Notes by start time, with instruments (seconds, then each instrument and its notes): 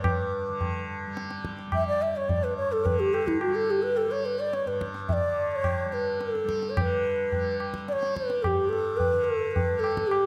Already playing: tanpura G2 D3 G3
0.01 bansuri B4, tabla na, tabla ge
0.48 tanpura D3
0.61 tabla tin, tabla ge
1.07 tanpura G3
1.17 tabla te
1.31 tabla te
1.45 tabla ke
1.59 tabla te
1.67 tanpura G3
1.72 bansuri E5, tabla na, tabla ge
1.88 bansuri D5
2.02 bansuri E5
2.16 bansuri C#5
2.28 tanpura G2, bansuri D5, tabla tin, tabla ge
2.44 bansuri B4
2.57 bansuri C#5
2.72 bansuri A4
2.85 tanpura D3, bansuri B4, tabla tin, tabla ge
2.99 bansuri G4
3.14 bansuri A4, tabla na
3.27 bansuri E4, tabla ke
3.41 bansuri F#4, tabla na
3.47 tanpura G3
3.55 bansuri A4
3.71 bansuri G4
3.83 bansuri B4
3.96 bansuri A4, tabla tin
4.06 tanpura G3
4.11 bansuri C#5
4.26 bansuri B4
4.39 bansuri D5
4.53 bansuri C#5, tabla te
4.66 tanpura G2, bansuri B4, tabla te
4.81 tabla ke
4.95 tabla te
5.08 bansuri E5, tabla tin, tabla ge
5.13 bansuri D5
5.25 tanpura D3
5.51 bansuri D5
5.56 bansuri C#5
5.64 tabla na, tabla ge
5.86 tanpura G3
5.92 bansuri B4, tabla te
6.21 bansuri A4, tabla te
6.35 tabla te
6.44 tanpura G3
6.49 tabla ke
6.62 tabla te
6.70 bansuri C#5
6.77 tanpura D3, bansuri C#5, tabla na, tabla ge
6.81 bansuri B4
7.32 tanpura G3, tabla tin, tabla ge
7.60 tabla na
7.74 tabla ke
7.88 bansuri D5, tabla te
7.93 tanpura G3, bansuri C#5
8.03 tabla te
8.16 bansuri B4, tabla ke
8.30 tabla te
8.42 bansuri A4, tabla na, tabla ge
8.47 bansuri G4
8.54 tanpura G2
8.69 bansuri A4, tabla te
8.97 bansuri B4, tabla tin, tabla ge
9.13 tanpura D3
9.24 bansuri A4
9.51 bansuri B4
9.56 tabla tin, tabla ge
9.72 tanpura G3
9.79 bansuri A4
9.84 tabla na
9.97 tabla ke
10.07 bansuri G4, tabla na